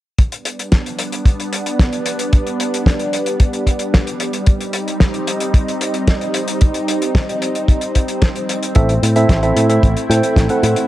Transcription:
0.18 G3 B3 D4, kick, closed hi-hat
0.32 closed hi-hat
0.45 closed hi-hat
0.59 closed hi-hat
0.72 kick, snare, closed hi-hat
0.86 closed hi-hat
0.99 closed hi-hat
1.12 closed hi-hat
1.25 kick, closed hi-hat
1.40 closed hi-hat
1.53 closed hi-hat
1.66 closed hi-hat
1.79 kick, snare, closed hi-hat
1.93 closed hi-hat
2.06 closed hi-hat
2.19 closed hi-hat
2.33 kick, closed hi-hat
2.47 closed hi-hat
2.60 closed hi-hat
2.74 closed hi-hat
2.86 kick, snare, closed hi-hat
3.00 closed hi-hat
3.13 closed hi-hat
3.26 closed hi-hat
3.40 kick, closed hi-hat
3.53 closed hi-hat
3.67 kick, closed hi-hat
3.79 closed hi-hat
3.94 kick, snare, closed hi-hat
4.07 closed hi-hat
4.20 closed hi-hat
4.33 closed hi-hat
4.46 C4 D#4, kick, closed hi-hat
4.61 closed hi-hat
4.73 closed hi-hat
4.88 closed hi-hat
5.00 kick, snare, closed hi-hat
5.14 closed hi-hat
5.27 closed hi-hat
5.40 closed hi-hat
5.54 kick, closed hi-hat
5.68 closed hi-hat
5.81 closed hi-hat
5.94 closed hi-hat
6.08 kick, snare, closed hi-hat
6.21 closed hi-hat
6.34 closed hi-hat
6.48 closed hi-hat
6.61 kick, closed hi-hat
6.74 closed hi-hat
6.88 closed hi-hat
7.02 closed hi-hat
7.15 kick, snare, closed hi-hat
7.29 closed hi-hat
7.42 closed hi-hat
7.55 closed hi-hat
7.68 kick, closed hi-hat
7.81 closed hi-hat
7.95 kick, closed hi-hat
8.08 closed hi-hat
8.22 kick, snare, closed hi-hat
8.36 closed hi-hat
8.49 closed hi-hat
8.63 closed hi-hat
8.75 A1 A3 C4 E4 A4 E5, kick, closed hi-hat
8.89 closed hi-hat
9.03 A2, closed hi-hat
9.16 C4 E4 A4 E5, closed hi-hat
9.29 A1, kick, snare, closed hi-hat
9.43 C4 E4 A4 E5, closed hi-hat
9.56 A2, closed hi-hat
9.69 C4 E4 A4 E5, closed hi-hat
9.83 A1, kick, closed hi-hat
9.97 closed hi-hat
10.10 A2 C4 E4 A4 G5, closed hi-hat
10.23 closed hi-hat
10.36 A1, kick, snare, closed hi-hat
10.49 C4 E4 A4 F#5, closed hi-hat
10.63 A2, closed hi-hat
10.76 closed hi-hat

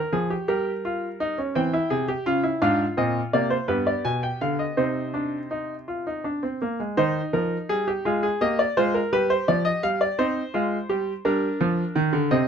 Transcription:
Already playing: A#4 C#5
0.12 F3 G#4
0.30 G4
0.48 G3 G4 A#4
0.85 F4
1.20 D#4
1.38 C#4
1.55 E3 C4 G5
1.73 E4
1.90 C3 G#4
2.08 G4
2.26 C#3 F4
2.43 E4
2.62 G#2 D4 F4 F5
2.97 A#2 C4 D#5
3.33 C3 A#3 D5
3.50 C5
3.68 G2 B3 G4 B4
3.87 D5
4.05 B2 G#5
4.23 G5
4.41 D3 F5
4.59 D#5
4.77 C3 C4 D#4 C5
5.14 D4
5.51 D#4
5.88 F4
6.07 D#4
6.24 D4
6.43 C4
6.62 A#3
6.80 G#3
6.97 D#3 D#4 C5
7.33 F3 A#4
7.69 G3 G#4
7.88 G4
8.05 G#3 F4 G#4
8.23 G#4
8.41 A#3 G4 D#5
8.59 D5
8.77 G#3 F4 C5
8.94 A#4
9.13 G3 G4 B4
9.30 C5
9.48 F3 D5
9.65 D#5
9.83 G3 F5
10.01 D5
10.19 C4 D#4 C5
10.54 G#3 F4
10.89 G3 G4
11.25 G3 D4 A#4
11.61 F3
11.96 D#3
12.13 D3
12.31 C3 C4 D#5

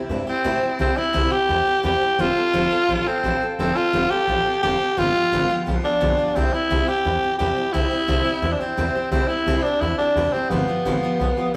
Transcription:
Already playing: C3
0.09 G2 G3 C4 E4 G4
0.27 C4 E4 G4, muted upright bass stroke
0.44 A2 C3 G3 C4 E4 G4
0.61 C4 E4 G4, muted upright bass stroke
0.79 C2 C3 G3 C4 E4 G4
0.96 C4 E4 G4, muted upright bass stroke
1.13 C2 C3 G3 C4 E4 G4
1.30 C4 E4 G4, muted upright bass stroke
1.48 E2 G3 C4 E4 G4
1.66 C4 E4 G4
1.83 E2 C3 G3 C4 E4 G4
2.01 C4 E4 G4, muted upright bass stroke
2.18 F1 F3 C4 F4 A4
2.36 C4 F4 A4
2.53 F1 F3 C4 F4 A4
2.71 C4 F4 A4
2.89 A1 F3 C4 F4 A4
3.06 C4 F4 A4, muted upright bass stroke
3.23 A1 F3 C4 F4 A4
3.41 C4 F4 A4, muted upright bass stroke
3.59 F1 F3 C4 F4 A4
3.76 C4 F4 A4, muted upright bass stroke
3.93 F1 F3 C4 F4 A4
4.10 C4 F4 G4 A4
4.27 A1 F3 C4 F4 A4
4.45 C4 F4 A4, muted upright bass stroke
4.63 F1 F3 C4 F4 G4 A4
4.80 C4 F4 A4, muted upright bass stroke
4.97 G1 G2 D3 F3 B3 F4 G4
5.14 F3 B3 F4 G4
5.32 G1 G2 D3 F3 B3 F4 G4
5.49 F3 B3 F4 G4
5.66 B1 F3 B3 F4 G4
5.84 F3 B3 D4 F4 G4, muted upright bass stroke
6.00 B1 G2 D3 F3 B3 F4 G4
6.17 F3 B3 F4 G4
6.35 C2 C3 G3 C4 E4 G4
6.53 C4 E4 G4, muted upright bass stroke
6.70 C2 C3 G3 C4 E4 G4
6.88 C4 E4 G4, muted upright bass stroke
7.05 E2 G3 C4 E4 G4
7.22 C4 E4 G4, muted upright bass stroke
7.39 E2 C3 G3 C4 E4 G4
7.56 C4 E4 G4
7.72 C2 C3 G3 C4 E4 G4
7.91 C4 E4 G4, muted upright bass stroke
8.08 C2 C3 G3 C4 E4 G4
8.24 C4 E4 G4
8.42 E2 G3 C4 E4 G4
8.52 D4
8.60 C4 E4 G4, muted upright bass stroke
8.77 E2 C3 G3 C4 E4 G4
8.95 C4 E4 G4, muted upright bass stroke
9.11 C2 C3 G3 C4 E4 G4
9.28 C4 E4 G4, muted upright bass stroke
9.46 C2 C3 G3 C4 E4 G4
9.63 C4 D4 E4 G4
9.81 E2 G3 C4 E4 G4
9.98 C4 D4 E4 G4, muted upright bass stroke
10.16 E2 C3 G3 C4 E4 G4
10.33 C4 E4 G4, muted upright bass stroke
10.50 G1 G2 D3 F3 B3 F4 G4
10.67 F3 B3 F4 G4, muted upright bass stroke
10.85 G1 G2 D3 F3 B3 F4 G4
11.02 F3 B3 F4 G4, muted upright bass stroke
11.19 B1 F3 B3 F4 G4
11.37 F3 B3 F4 G4

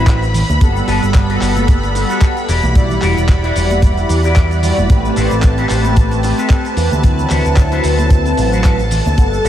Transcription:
Already playing: A1 E4 F#4 B4 C5 B5
0.07 F#3 C4 E4 B4, kick, clap, closed hi-hat, cabasa, shaker
0.22 closed hi-hat, cabasa, shaker
0.34 open hi-hat, low conga, shaker
0.49 D2, muted clean electric guitar stroke, closed hi-hat, high conga, cabasa, shaker
0.60 G1 G3 B3 A4 F#5, kick, closed hi-hat, cabasa, shaker
0.76 cabasa, shaker
0.87 G1 F#4 G4 A4 B4, open hi-hat, shaker
1.03 G1, closed hi-hat, cabasa, shaker
1.14 muted clean electric guitar stroke, kick, clap, closed hi-hat, cabasa, shaker
1.29 F#4 G4 A4 B4, closed hi-hat, cabasa
1.41 G1, clap, open hi-hat, shaker
1.57 closed hi-hat, high conga, cabasa, shaker
1.68 kick, closed hi-hat, cabasa, shaker
1.83 closed hi-hat, high bongo, cabasa, shaker
1.95 G3 B3 A4 F#5, muted clean electric guitar stroke, open hi-hat, high bongo, shaker
2.09 F#4 G4 A4 B4, closed hi-hat, cabasa, shaker
2.21 kick, clap, closed hi-hat, cabasa, shaker
2.37 closed hi-hat, cabasa, shaker
2.48 E1 E4 F#4 G4 D5, open hi-hat, shaker
2.63 B1, closed hi-hat, high conga, low conga, cabasa, shaker
2.75 G3 E4 D5 F#5, kick, closed hi-hat, cabasa, shaker
2.90 low conga, cabasa, shaker
3.02 E1 E4 F#4 G4 D5, clap, open hi-hat, low conga, shaker
3.17 E1, closed hi-hat, cabasa, shaker
3.28 muted clean electric guitar stroke, kick, clap, closed hi-hat, cabasa, shaker
3.44 E4 F#4 G4 D5, closed hi-hat, cabasa
3.56 E1, open hi-hat, shaker
3.70 closed hi-hat, high conga, cabasa, shaker
3.82 kick, closed hi-hat, cabasa, shaker
3.97 closed hi-hat, high bongo, cabasa, shaker
4.09 E2, muted clean electric guitar stroke, open hi-hat, shaker
4.24 G3 E4 F#4 G4 D5 F#5, closed hi-hat, cabasa, shaker
4.36 kick, clap, closed hi-hat, cabasa, shaker
4.51 closed hi-hat, cabasa, shaker
4.62 G3 E4 F#4 D5, open hi-hat, low conga, shaker
4.78 E1, muted clean electric guitar stroke, closed hi-hat, high conga, cabasa, shaker
4.88 A1 A3 C4 G4 B4 A5, kick, closed hi-hat, cabasa, shaker
5.05 cabasa, shaker
5.16 A1 C4 G4 A4 B4, open hi-hat, shaker
5.30 A1, closed hi-hat, cabasa, shaker
5.42 muted clean electric guitar stroke, kick, clap, closed hi-hat, cabasa, shaker
5.57 C4 G4 A4 B4, closed hi-hat, cabasa
5.69 A1, clap, open hi-hat, shaker
5.84 closed hi-hat, high conga, cabasa, shaker
5.96 kick, closed hi-hat, cabasa, shaker
6.11 closed hi-hat, high bongo, cabasa, shaker
6.22 A3 C4 G4 B4, muted clean electric guitar stroke, open hi-hat, high bongo, shaker
6.38 C4 G4 A4 B4, closed hi-hat, cabasa, shaker
6.50 kick, clap, closed hi-hat, cabasa, shaker
6.65 closed hi-hat, cabasa, shaker
6.77 E2, open hi-hat, shaker
6.91 D2, muted clean electric guitar stroke, closed hi-hat, high conga, low conga, cabasa, shaker
7.03 F#3 C4 E4 B4, kick, closed hi-hat, cabasa, shaker
7.19 low conga, cabasa, shaker
7.29 D2 C4 E4 F#4 B4, clap, open hi-hat, low conga, shaker
7.45 D2, closed hi-hat, cabasa, shaker
7.56 muted clean electric guitar stroke, kick, clap, closed hi-hat, cabasa, shaker
7.72 C4 E4 F#4 B4, closed hi-hat, cabasa
7.84 D2, open hi-hat, shaker
7.99 closed hi-hat, high conga, cabasa, shaker
8.10 kick, closed hi-hat, cabasa, shaker
8.26 closed hi-hat, high bongo, cabasa, shaker
8.37 A1, muted clean electric guitar stroke, open hi-hat, shaker
8.52 C4 E4 F#4 B4, closed hi-hat, cabasa, shaker
8.64 F#3 C4 E4 B4, kick, clap, closed hi-hat, cabasa, shaker
8.79 closed hi-hat, cabasa, shaker
8.91 open hi-hat, low conga, shaker
9.06 D2, muted clean electric guitar stroke, closed hi-hat, high conga, cabasa, shaker
9.17 G1 G3 B3 A4 F#5, kick, closed hi-hat, cabasa, shaker
9.33 cabasa, shaker
9.44 G1 B3 F#4 G4 A4, open hi-hat, shaker

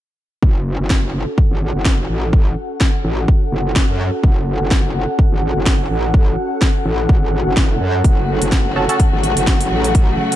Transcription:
0.42 F#1 C#4, kick
0.66 F#4
0.80 F#1 A4
0.90 kick, snare
1.29 F#5
1.38 kick
1.51 G#1
1.75 F#1
1.85 kick, snare
2.09 A1
2.33 kick
2.81 kick, snare
3.04 A1
3.28 kick
3.52 F#1
3.76 kick, snare
3.89 F#2
4.24 F#1, kick
4.61 F#1
4.71 kick, snare
5.19 kick
5.32 G#1
5.56 F#1
5.66 kick, snare
5.90 A1
6.14 kick
6.62 kick, snare
6.85 A1
7.09 G#1, kick
7.46 F#1
7.57 E1, kick, snare
7.81 F#2
8.04 F#1 C#3 F#3 A3 F#4, kick, closed hi-hat
8.42 F#1, closed hi-hat
8.52 kick, snare, closed hi-hat
8.76 C#4 F#4 A4
8.89 C#4 F#4 A4, closed hi-hat
9.00 kick, closed hi-hat
9.13 G#1
9.23 closed hi-hat
9.37 F#1, closed hi-hat
9.47 kick, snare, closed hi-hat
9.61 closed hi-hat
9.71 A1
9.84 closed hi-hat
9.95 kick, closed hi-hat
10.32 closed hi-hat

